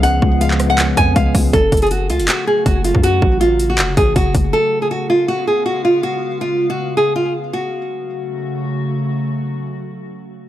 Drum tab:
HH |x-------x---x---x---x---x---o---|x---xxxxx---x-x-x-------x---x---|x-------x---x---x---x---x---x---|--------------------------------|
CP |----------x-----x---------------|----------------x---------------|----------------x---------------|--------------------------------|
SD |------------r-------------------|--------------------------------|--------------------------------|--------------------------------|
BD |----o---------------o---o---o---|o---o-------------------o-----o-|----o---------------o---o---o---|--------------------------------|

HH |--------------------------------|--------------------------------|--------------------------------|
CP |--------------------------------|--------------------------------|--------------------------------|
SD |--------------------------------|--------------------------------|--------------------------------|
BD |--------------------------------|--------------------------------|--------------------------------|